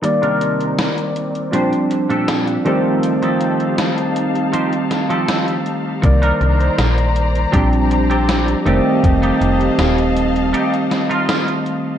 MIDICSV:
0, 0, Header, 1, 7, 480
1, 0, Start_track
1, 0, Tempo, 750000
1, 22, Time_signature, 4, 2, 24, 8
1, 7668, End_track
2, 0, Start_track
2, 0, Title_t, "String section"
2, 0, Program_c, 0, 48
2, 23, Note_on_c, 0, 51, 69
2, 24, Note_on_c, 0, 60, 77
2, 24, Note_on_c, 0, 74, 70
2, 24, Note_on_c, 0, 82, 83
2, 973, Note_off_c, 0, 51, 0
2, 973, Note_off_c, 0, 82, 0
2, 982, Note_on_c, 0, 67, 72
2, 1686, Note_off_c, 0, 60, 0
2, 1686, Note_off_c, 0, 74, 0
2, 1697, Note_on_c, 0, 77, 70
2, 1698, Note_on_c, 0, 63, 77
2, 1699, Note_on_c, 0, 81, 86
2, 3836, Note_off_c, 0, 67, 0
2, 3838, Note_off_c, 0, 63, 0
2, 3838, Note_off_c, 0, 77, 0
2, 3839, Note_off_c, 0, 81, 0
2, 3862, Note_on_c, 0, 51, 76
2, 3862, Note_on_c, 0, 72, 74
2, 3862, Note_on_c, 0, 74, 70
2, 3862, Note_on_c, 0, 82, 85
2, 4812, Note_off_c, 0, 51, 0
2, 4812, Note_off_c, 0, 72, 0
2, 4821, Note_on_c, 0, 67, 76
2, 4821, Note_on_c, 0, 72, 69
2, 5525, Note_off_c, 0, 74, 0
2, 5525, Note_off_c, 0, 82, 0
2, 5534, Note_off_c, 0, 72, 0
2, 5541, Note_on_c, 0, 77, 74
2, 5542, Note_on_c, 0, 75, 72
2, 5542, Note_on_c, 0, 81, 87
2, 7668, Note_off_c, 0, 67, 0
2, 7668, Note_off_c, 0, 75, 0
2, 7668, Note_off_c, 0, 77, 0
2, 7668, Note_off_c, 0, 81, 0
2, 7668, End_track
3, 0, Start_track
3, 0, Title_t, "Clean electric guitar"
3, 0, Program_c, 1, 27
3, 140, Note_on_c, 1, 48, 85
3, 143, Note_on_c, 1, 62, 72
3, 148, Note_on_c, 1, 63, 69
3, 149, Note_on_c, 1, 70, 97
3, 561, Note_off_c, 1, 48, 0
3, 563, Note_off_c, 1, 62, 0
3, 564, Note_off_c, 1, 63, 0
3, 565, Note_off_c, 1, 70, 0
3, 975, Note_on_c, 1, 46, 82
3, 978, Note_on_c, 1, 62, 76
3, 981, Note_on_c, 1, 67, 75
3, 985, Note_on_c, 1, 72, 90
3, 1102, Note_off_c, 1, 46, 0
3, 1103, Note_off_c, 1, 62, 0
3, 1105, Note_off_c, 1, 67, 0
3, 1107, Note_off_c, 1, 72, 0
3, 1340, Note_on_c, 1, 46, 81
3, 1342, Note_on_c, 1, 62, 75
3, 1347, Note_on_c, 1, 67, 65
3, 1349, Note_on_c, 1, 69, 91
3, 1641, Note_off_c, 1, 46, 0
3, 1642, Note_off_c, 1, 62, 0
3, 1643, Note_off_c, 1, 67, 0
3, 1645, Note_off_c, 1, 69, 0
3, 1697, Note_on_c, 1, 53, 85
3, 1701, Note_on_c, 1, 63, 63
3, 1702, Note_on_c, 1, 67, 80
3, 1707, Note_on_c, 1, 69, 84
3, 1989, Note_off_c, 1, 53, 0
3, 1990, Note_off_c, 1, 63, 0
3, 1992, Note_off_c, 1, 67, 0
3, 1993, Note_off_c, 1, 69, 0
3, 2061, Note_on_c, 1, 53, 86
3, 2064, Note_on_c, 1, 63, 78
3, 2068, Note_on_c, 1, 67, 69
3, 2070, Note_on_c, 1, 69, 94
3, 2481, Note_off_c, 1, 53, 0
3, 2483, Note_off_c, 1, 63, 0
3, 2484, Note_off_c, 1, 67, 0
3, 2486, Note_off_c, 1, 69, 0
3, 2898, Note_on_c, 1, 53, 82
3, 2900, Note_on_c, 1, 63, 80
3, 2904, Note_on_c, 1, 67, 65
3, 2905, Note_on_c, 1, 72, 93
3, 3023, Note_off_c, 1, 53, 0
3, 3025, Note_off_c, 1, 63, 0
3, 3026, Note_off_c, 1, 67, 0
3, 3027, Note_off_c, 1, 72, 0
3, 3260, Note_on_c, 1, 53, 83
3, 3263, Note_on_c, 1, 63, 76
3, 3266, Note_on_c, 1, 67, 76
3, 3269, Note_on_c, 1, 69, 91
3, 3561, Note_off_c, 1, 53, 0
3, 3563, Note_off_c, 1, 63, 0
3, 3564, Note_off_c, 1, 67, 0
3, 3566, Note_off_c, 1, 69, 0
3, 3980, Note_on_c, 1, 62, 88
3, 3984, Note_on_c, 1, 63, 80
3, 3989, Note_on_c, 1, 70, 98
3, 4401, Note_off_c, 1, 62, 0
3, 4403, Note_off_c, 1, 63, 0
3, 4405, Note_off_c, 1, 70, 0
3, 4815, Note_on_c, 1, 60, 85
3, 4819, Note_on_c, 1, 62, 76
3, 4824, Note_on_c, 1, 67, 93
3, 4942, Note_off_c, 1, 60, 0
3, 4944, Note_off_c, 1, 62, 0
3, 4946, Note_off_c, 1, 67, 0
3, 5183, Note_on_c, 1, 60, 83
3, 5186, Note_on_c, 1, 62, 79
3, 5191, Note_on_c, 1, 67, 92
3, 5482, Note_off_c, 1, 60, 0
3, 5484, Note_off_c, 1, 62, 0
3, 5486, Note_off_c, 1, 67, 0
3, 5540, Note_on_c, 1, 57, 89
3, 5544, Note_on_c, 1, 63, 82
3, 5549, Note_on_c, 1, 67, 96
3, 5830, Note_off_c, 1, 57, 0
3, 5832, Note_off_c, 1, 63, 0
3, 5835, Note_off_c, 1, 67, 0
3, 5901, Note_on_c, 1, 57, 88
3, 5906, Note_on_c, 1, 63, 80
3, 5910, Note_on_c, 1, 67, 99
3, 6322, Note_off_c, 1, 57, 0
3, 6324, Note_off_c, 1, 63, 0
3, 6326, Note_off_c, 1, 67, 0
3, 6739, Note_on_c, 1, 57, 84
3, 6743, Note_on_c, 1, 63, 79
3, 6747, Note_on_c, 1, 67, 93
3, 6864, Note_off_c, 1, 57, 0
3, 6866, Note_off_c, 1, 63, 0
3, 6868, Note_off_c, 1, 67, 0
3, 7101, Note_on_c, 1, 57, 81
3, 7106, Note_on_c, 1, 63, 71
3, 7109, Note_on_c, 1, 65, 92
3, 7402, Note_off_c, 1, 57, 0
3, 7403, Note_off_c, 1, 63, 0
3, 7405, Note_off_c, 1, 65, 0
3, 7668, End_track
4, 0, Start_track
4, 0, Title_t, "Tine electric piano"
4, 0, Program_c, 2, 4
4, 12, Note_on_c, 2, 51, 78
4, 20, Note_on_c, 2, 55, 71
4, 25, Note_on_c, 2, 58, 70
4, 31, Note_on_c, 2, 74, 83
4, 134, Control_c, 2, 64, 127
4, 931, Note_off_c, 2, 51, 0
4, 934, Note_off_c, 2, 55, 0
4, 937, Note_off_c, 2, 58, 0
4, 940, Note_off_c, 2, 74, 0
4, 970, Note_on_c, 2, 53, 81
4, 978, Note_on_c, 2, 55, 74
4, 984, Note_on_c, 2, 60, 74
4, 989, Control_c, 2, 64, 0
4, 990, Note_on_c, 2, 62, 88
4, 1087, Control_c, 2, 64, 127
4, 1649, Note_off_c, 2, 53, 0
4, 1653, Note_off_c, 2, 55, 0
4, 1656, Note_off_c, 2, 60, 0
4, 1659, Note_off_c, 2, 62, 0
4, 1694, Note_on_c, 2, 51, 88
4, 1700, Note_on_c, 2, 55, 80
4, 1706, Note_on_c, 2, 57, 80
4, 1710, Control_c, 2, 64, 0
4, 1712, Note_on_c, 2, 60, 98
4, 1838, Control_c, 2, 64, 127
4, 3811, Note_off_c, 2, 51, 0
4, 3814, Note_off_c, 2, 55, 0
4, 3818, Note_off_c, 2, 57, 0
4, 3820, Note_off_c, 2, 60, 0
4, 3853, Note_on_c, 2, 51, 76
4, 3859, Note_on_c, 2, 55, 72
4, 3867, Note_on_c, 2, 58, 71
4, 3870, Control_c, 2, 64, 0
4, 3872, Note_on_c, 2, 74, 84
4, 3998, Control_c, 2, 64, 127
4, 4771, Note_off_c, 2, 51, 0
4, 4774, Note_off_c, 2, 55, 0
4, 4778, Note_off_c, 2, 58, 0
4, 4781, Note_off_c, 2, 74, 0
4, 4813, Note_on_c, 2, 53, 81
4, 4819, Note_on_c, 2, 55, 75
4, 4826, Note_on_c, 2, 60, 73
4, 4829, Control_c, 2, 64, 0
4, 4832, Note_on_c, 2, 62, 92
4, 4927, Control_c, 2, 64, 127
4, 5491, Note_off_c, 2, 53, 0
4, 5494, Note_off_c, 2, 55, 0
4, 5498, Note_off_c, 2, 60, 0
4, 5500, Note_off_c, 2, 62, 0
4, 5533, Note_on_c, 2, 51, 89
4, 5540, Note_on_c, 2, 55, 82
4, 5545, Note_on_c, 2, 57, 80
4, 5551, Control_c, 2, 64, 0
4, 5553, Note_on_c, 2, 60, 99
4, 5642, Control_c, 2, 64, 127
4, 7651, Note_off_c, 2, 51, 0
4, 7654, Note_off_c, 2, 55, 0
4, 7657, Note_off_c, 2, 57, 0
4, 7661, Note_off_c, 2, 60, 0
4, 7668, End_track
5, 0, Start_track
5, 0, Title_t, "FM bass"
5, 0, Program_c, 3, 39
5, 3862, Note_on_c, 3, 36, 98
5, 4046, Note_off_c, 3, 36, 0
5, 4102, Note_on_c, 3, 36, 84
5, 4286, Note_off_c, 3, 36, 0
5, 4342, Note_on_c, 3, 34, 103
5, 4777, Note_off_c, 3, 34, 0
5, 4823, Note_on_c, 3, 34, 96
5, 5472, Note_off_c, 3, 34, 0
5, 5545, Note_on_c, 3, 29, 87
5, 5637, Note_off_c, 3, 29, 0
5, 5783, Note_on_c, 3, 29, 95
5, 5967, Note_off_c, 3, 29, 0
5, 6022, Note_on_c, 3, 29, 86
5, 6206, Note_off_c, 3, 29, 0
5, 6262, Note_on_c, 3, 27, 102
5, 6742, Note_off_c, 3, 27, 0
5, 7668, End_track
6, 0, Start_track
6, 0, Title_t, "Muted clean electric guitar strokes"
6, 17, Note_on_c, 9, 29, 104
6, 81, Note_off_c, 9, 29, 0
6, 1218, Note_on_c, 9, 29, 31
6, 1282, Note_off_c, 9, 29, 0
6, 3137, Note_on_c, 9, 29, 33
6, 3201, Note_off_c, 9, 29, 0
6, 3855, Note_on_c, 9, 29, 109
6, 3919, Note_off_c, 9, 29, 0
6, 5058, Note_on_c, 9, 29, 33
6, 5122, Note_off_c, 9, 29, 0
6, 6979, Note_on_c, 9, 29, 32
6, 7043, Note_off_c, 9, 29, 0
6, 7668, End_track
7, 0, Start_track
7, 0, Title_t, "Drums"
7, 23, Note_on_c, 9, 42, 91
7, 87, Note_off_c, 9, 42, 0
7, 146, Note_on_c, 9, 42, 39
7, 210, Note_off_c, 9, 42, 0
7, 264, Note_on_c, 9, 42, 66
7, 328, Note_off_c, 9, 42, 0
7, 387, Note_on_c, 9, 42, 40
7, 451, Note_off_c, 9, 42, 0
7, 503, Note_on_c, 9, 38, 114
7, 503, Note_on_c, 9, 42, 91
7, 567, Note_off_c, 9, 38, 0
7, 567, Note_off_c, 9, 42, 0
7, 626, Note_on_c, 9, 42, 39
7, 690, Note_off_c, 9, 42, 0
7, 743, Note_on_c, 9, 42, 65
7, 807, Note_off_c, 9, 42, 0
7, 865, Note_on_c, 9, 42, 39
7, 929, Note_off_c, 9, 42, 0
7, 982, Note_on_c, 9, 42, 92
7, 1046, Note_off_c, 9, 42, 0
7, 1105, Note_on_c, 9, 42, 39
7, 1169, Note_off_c, 9, 42, 0
7, 1221, Note_on_c, 9, 42, 65
7, 1285, Note_off_c, 9, 42, 0
7, 1346, Note_on_c, 9, 42, 39
7, 1410, Note_off_c, 9, 42, 0
7, 1460, Note_on_c, 9, 38, 111
7, 1460, Note_on_c, 9, 42, 89
7, 1524, Note_off_c, 9, 38, 0
7, 1524, Note_off_c, 9, 42, 0
7, 1584, Note_on_c, 9, 42, 41
7, 1648, Note_off_c, 9, 42, 0
7, 1700, Note_on_c, 9, 42, 39
7, 1764, Note_off_c, 9, 42, 0
7, 1940, Note_on_c, 9, 42, 90
7, 2004, Note_off_c, 9, 42, 0
7, 2064, Note_on_c, 9, 42, 39
7, 2128, Note_off_c, 9, 42, 0
7, 2180, Note_on_c, 9, 42, 66
7, 2244, Note_off_c, 9, 42, 0
7, 2304, Note_on_c, 9, 42, 38
7, 2368, Note_off_c, 9, 42, 0
7, 2420, Note_on_c, 9, 38, 115
7, 2420, Note_on_c, 9, 42, 92
7, 2484, Note_off_c, 9, 38, 0
7, 2484, Note_off_c, 9, 42, 0
7, 2545, Note_on_c, 9, 42, 40
7, 2609, Note_off_c, 9, 42, 0
7, 2662, Note_on_c, 9, 42, 69
7, 2726, Note_off_c, 9, 42, 0
7, 2786, Note_on_c, 9, 42, 39
7, 2850, Note_off_c, 9, 42, 0
7, 2902, Note_on_c, 9, 42, 93
7, 2966, Note_off_c, 9, 42, 0
7, 3025, Note_on_c, 9, 42, 41
7, 3089, Note_off_c, 9, 42, 0
7, 3142, Note_on_c, 9, 38, 62
7, 3142, Note_on_c, 9, 42, 68
7, 3206, Note_off_c, 9, 38, 0
7, 3206, Note_off_c, 9, 42, 0
7, 3266, Note_on_c, 9, 42, 40
7, 3330, Note_off_c, 9, 42, 0
7, 3382, Note_on_c, 9, 38, 114
7, 3382, Note_on_c, 9, 42, 93
7, 3446, Note_off_c, 9, 38, 0
7, 3446, Note_off_c, 9, 42, 0
7, 3506, Note_on_c, 9, 42, 40
7, 3570, Note_off_c, 9, 42, 0
7, 3622, Note_on_c, 9, 42, 39
7, 3686, Note_off_c, 9, 42, 0
7, 3862, Note_on_c, 9, 42, 89
7, 3863, Note_on_c, 9, 36, 124
7, 3926, Note_off_c, 9, 42, 0
7, 3927, Note_off_c, 9, 36, 0
7, 3986, Note_on_c, 9, 42, 38
7, 4050, Note_off_c, 9, 42, 0
7, 4103, Note_on_c, 9, 42, 67
7, 4167, Note_off_c, 9, 42, 0
7, 4227, Note_on_c, 9, 42, 38
7, 4291, Note_off_c, 9, 42, 0
7, 4342, Note_on_c, 9, 38, 119
7, 4342, Note_on_c, 9, 42, 88
7, 4406, Note_off_c, 9, 38, 0
7, 4406, Note_off_c, 9, 42, 0
7, 4467, Note_on_c, 9, 42, 39
7, 4531, Note_off_c, 9, 42, 0
7, 4583, Note_on_c, 9, 42, 68
7, 4647, Note_off_c, 9, 42, 0
7, 4707, Note_on_c, 9, 42, 39
7, 4771, Note_off_c, 9, 42, 0
7, 4823, Note_on_c, 9, 36, 124
7, 4824, Note_on_c, 9, 42, 91
7, 4887, Note_off_c, 9, 36, 0
7, 4888, Note_off_c, 9, 42, 0
7, 4947, Note_on_c, 9, 42, 39
7, 5011, Note_off_c, 9, 42, 0
7, 5063, Note_on_c, 9, 42, 65
7, 5127, Note_off_c, 9, 42, 0
7, 5188, Note_on_c, 9, 42, 40
7, 5252, Note_off_c, 9, 42, 0
7, 5304, Note_on_c, 9, 38, 120
7, 5304, Note_on_c, 9, 42, 90
7, 5368, Note_off_c, 9, 38, 0
7, 5368, Note_off_c, 9, 42, 0
7, 5428, Note_on_c, 9, 42, 41
7, 5492, Note_off_c, 9, 42, 0
7, 5545, Note_on_c, 9, 42, 39
7, 5609, Note_off_c, 9, 42, 0
7, 5784, Note_on_c, 9, 36, 121
7, 5785, Note_on_c, 9, 42, 86
7, 5848, Note_off_c, 9, 36, 0
7, 5849, Note_off_c, 9, 42, 0
7, 5908, Note_on_c, 9, 42, 37
7, 5972, Note_off_c, 9, 42, 0
7, 6025, Note_on_c, 9, 42, 65
7, 6089, Note_off_c, 9, 42, 0
7, 6149, Note_on_c, 9, 42, 38
7, 6213, Note_off_c, 9, 42, 0
7, 6264, Note_on_c, 9, 38, 117
7, 6264, Note_on_c, 9, 42, 88
7, 6328, Note_off_c, 9, 38, 0
7, 6328, Note_off_c, 9, 42, 0
7, 6389, Note_on_c, 9, 42, 38
7, 6453, Note_off_c, 9, 42, 0
7, 6505, Note_on_c, 9, 42, 66
7, 6569, Note_off_c, 9, 42, 0
7, 6629, Note_on_c, 9, 42, 38
7, 6693, Note_off_c, 9, 42, 0
7, 6746, Note_on_c, 9, 42, 87
7, 6810, Note_off_c, 9, 42, 0
7, 6871, Note_on_c, 9, 42, 39
7, 6935, Note_off_c, 9, 42, 0
7, 6985, Note_on_c, 9, 38, 63
7, 6985, Note_on_c, 9, 42, 63
7, 7049, Note_off_c, 9, 38, 0
7, 7049, Note_off_c, 9, 42, 0
7, 7109, Note_on_c, 9, 42, 39
7, 7173, Note_off_c, 9, 42, 0
7, 7225, Note_on_c, 9, 38, 120
7, 7225, Note_on_c, 9, 42, 90
7, 7289, Note_off_c, 9, 38, 0
7, 7289, Note_off_c, 9, 42, 0
7, 7348, Note_on_c, 9, 42, 38
7, 7412, Note_off_c, 9, 42, 0
7, 7464, Note_on_c, 9, 42, 38
7, 7528, Note_off_c, 9, 42, 0
7, 7668, End_track
0, 0, End_of_file